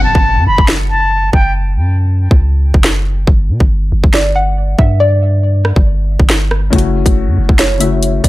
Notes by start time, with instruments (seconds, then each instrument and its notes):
Already playing: 808-style bass F#1, impact
0.04 flute A5
0.15 808-style bass F#1, kick
0.37 808-style bass F#2
0.47 808-style bass F#1, flute B5
0.58 808-style bass F#1, kick
0.68 snare
0.90 flute A5
1.33 808-style bass F#1, flute G5, kick
1.76 808-style bass F#2
2.31 808-style bass C#2, kick
2.74 808-style bass F#1, kick
2.84 snare
3.27 808-style bass G1, kick
3.49 808-style bass B2
3.60 808-style bass G1, kick
3.92 808-style bass G1
4.04 808-style bass G1, kick
4.14 synth pluck D5, snare
4.36 synth pluck F#5
4.79 808-style bass G2, synth pluck E5, kick
5.00 synth pluck D5
5.65 cross-stick
5.76 808-style bass G1, kick
6.20 808-style bass G1, kick
6.30 snare
6.51 cross-stick
6.70 808-style bass F#1, felt piano C#3 A3 E4, kick, closed hi-hat
6.75 felt piano F#4, closed hi-hat
7.06 808-style bass F#1, kick, closed hi-hat
7.27 808-style bass F#2
7.38 808-style bass F#1
7.49 808-style bass F#1, kick
7.59 synth pluck C#5, snare, closed hi-hat
7.78 felt piano C#3 A3 E4, synth pluck E5, closed hi-hat
7.83 felt piano F#4
8.03 closed hi-hat
8.24 808-style bass F#1, synth pluck D5, kick, closed hi-hat